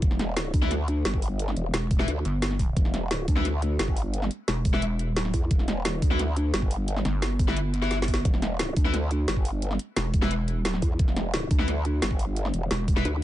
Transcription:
0.02 E1, kick, closed hi-hat
0.11 snare
0.19 snare, closed hi-hat
0.37 snare, closed hi-hat
0.54 D2, kick, open hi-hat
0.62 E4 B4 E5, snare
0.71 snare, closed hi-hat
0.88 closed hi-hat
1.05 G1, snare, closed hi-hat
1.14 kick
1.22 open hi-hat
1.39 closed hi-hat
1.48 snare
1.57 E1, closed hi-hat
1.74 E1, snare, closed hi-hat
1.91 kick, open hi-hat
1.99 E4 B4 E5, snare
2.08 D2, closed hi-hat
2.25 G1, closed hi-hat
2.42 snare, closed hi-hat
2.51 snare
2.59 kick, open hi-hat
2.77 E1, kick, closed hi-hat
2.85 snare
2.94 snare, closed hi-hat
3.11 snare, closed hi-hat
3.28 D2, kick, open hi-hat
3.36 E4 B4 E5, snare
3.45 snare, closed hi-hat
3.62 closed hi-hat
3.79 G1, snare, closed hi-hat
3.88 kick
3.97 open hi-hat
4.14 closed hi-hat
4.22 snare
4.31 closed hi-hat
4.48 E1, snare, closed hi-hat
4.65 kick, open hi-hat
4.73 E4 B4 E5, snare
4.82 closed hi-hat
4.99 closed hi-hat
5.08 D#1
5.17 snare, closed hi-hat
5.25 snare
5.34 E2, kick, open hi-hat
5.51 E1, kick, closed hi-hat
5.59 snare
5.68 snare, closed hi-hat
5.85 snare, closed hi-hat
6.02 D2, kick, open hi-hat
6.11 E4 B4 E5, snare
6.19 snare, closed hi-hat
6.37 closed hi-hat
6.54 G1, snare, closed hi-hat
6.62 kick
6.71 open hi-hat
6.88 closed hi-hat
6.97 snare
7.05 G1, snare, closed hi-hat
7.22 snare, closed hi-hat
7.39 kick, open hi-hat
7.48 E4 B4 E5, snare
7.57 closed hi-hat
7.74 closed hi-hat
7.82 E4 B4 E5, snare
7.91 snare, closed hi-hat
8.02 snare
8.08 kick, open hi-hat
8.14 snare
8.25 E1, kick, closed hi-hat
8.34 snare
8.42 snare, closed hi-hat
8.59 snare, closed hi-hat
8.77 D2, kick, open hi-hat
8.85 E4 B4 E5, snare
8.94 snare, closed hi-hat
9.11 closed hi-hat
9.28 G1, snare, closed hi-hat
9.37 kick
9.45 open hi-hat
9.62 closed hi-hat
9.71 snare
9.79 closed hi-hat
9.97 E1, snare, closed hi-hat
10.14 kick, open hi-hat
10.22 E4 B4 E5, snare
10.31 closed hi-hat
10.48 closed hi-hat
10.57 D#1
10.65 snare, closed hi-hat
10.74 snare
10.82 E2, kick, open hi-hat
10.99 E1, kick, closed hi-hat
11.08 snare
11.16 snare, closed hi-hat
11.34 snare, closed hi-hat
11.51 D2, kick, open hi-hat
11.59 E4 B4 E5, snare
11.68 snare, closed hi-hat
11.85 closed hi-hat
12.02 G1, snare, closed hi-hat
12.11 kick
12.19 open hi-hat
12.36 closed hi-hat
12.45 snare
12.54 E1, closed hi-hat
12.71 E1, snare, closed hi-hat
12.88 kick, open hi-hat
12.96 E4 B4 E5, snare
13.05 D2, closed hi-hat

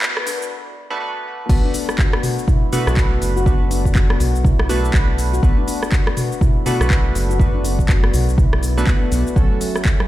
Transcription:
Already playing: A3 B3 D4 F#4 B4
0.02 B3, kick, clap, shaker
0.17 B3, cross-stick
0.26 D4, open hi-hat, shaker
0.42 shaker
0.90 A3 B3 D4 F#4 B4
1.00 A3 B3 D4 F#4 B4
1.49 B1 A3 B3 D4 F#4 B4, kick, crash, shaker
1.65 D4
1.74 D4, open hi-hat, shaker
1.89 cross-stick, shaker
1.99 F#4, kick, clap, shaker
2.13 B3, cross-stick
2.23 F#4, open hi-hat, mid tom, shaker
2.39 shaker
2.48 E4, kick, mid tom, shaker
2.73 A3 B3 D4 F#4 B4, open hi-hat, mid tom, shaker
2.87 B1, cross-stick, shaker
2.97 B4, kick, clap, shaker
3.22 F#1, open hi-hat, shaker
3.36 F#4, shaker
3.46 A3 B3 D4 F#4 B4, kick, shaker
3.61 D4
3.71 D4, open hi-hat, shaker
3.85 kick, shaker
3.95 F#4, kick, clap, shaker
4.10 B3, cross-stick
4.20 B1 F#4, open hi-hat, mid tom, shaker
4.36 shaker
4.45 E4, kick, mid tom, shaker
4.59 cross-stick
4.69 A3 B3 D4 F#4 B4, open hi-hat, shaker
4.85 shaker
4.94 B1 B4, kick, clap, shaker
5.18 open hi-hat, shaker
5.33 F#4, shaker
5.43 B1 A3 B3 D4 F#4 B4, kick, shaker
5.58 D4
5.68 D4, open hi-hat, shaker
5.83 cross-stick, shaker
5.92 F#4, kick, clap, shaker
6.07 B3, cross-stick
6.17 F#4, open hi-hat, mid tom, shaker
6.32 shaker
6.41 E4, kick, mid tom, shaker
6.66 A3 B3 D4 F#4 B4, open hi-hat, mid tom, shaker
6.81 B1, cross-stick, shaker
6.90 B4, kick, clap, shaker
7.15 F#1, open hi-hat, shaker
7.30 F#4, shaker
7.40 A3 B3 D4 F#4 B4, kick, shaker
7.54 D4
7.64 D4, open hi-hat, shaker
7.79 kick, shaker
7.89 F#4, kick, clap, shaker
8.04 B3, cross-stick
8.13 B1 F#4, open hi-hat, mid tom, shaker
8.29 shaker
8.38 E4, kick, mid tom, shaker
8.53 cross-stick
8.63 B3, open hi-hat, shaker
8.77 A3 B3 D4 F#4 B4, shaker
8.87 A3 B3 D4 F#4 B4, kick, clap, shaker
9.02 B3
9.12 B1 B3, open hi-hat, shaker
9.27 shaker
9.36 B1 F#3 C#4 F#4 A4, kick, shaker
9.51 A3
9.61 F#3, open hi-hat, shaker
9.76 cross-stick, shaker
9.85 C#4, kick, clap, shaker
10.00 F#3, cross-stick

